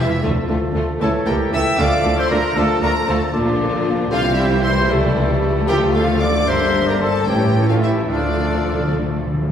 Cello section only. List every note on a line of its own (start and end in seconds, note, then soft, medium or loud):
0.00 0.23 E2 medium
0.23 0.31 D2 medium
0.48 0.56 D2 medium
0.75 0.83 D2 medium
1.01 1.09 C#2 medium
1.27 1.35 C#2 medium
1.52 1.60 C#2 medium
1.78 1.86 D2 medium
2.04 2.12 D2 medium
2.31 2.39 D2 medium
2.56 2.64 D2 medium
2.82 2.90 D2 medium
3.08 3.16 D2 medium
3.34 4.08 A#2 medium
4.11 4.88 C2 medium
4.89 5.68 C#2 medium
5.67 6.47 D2 medium
6.48 7.26 G2 medium
7.27 8.07 A2 medium
8.09 9.50 D2 medium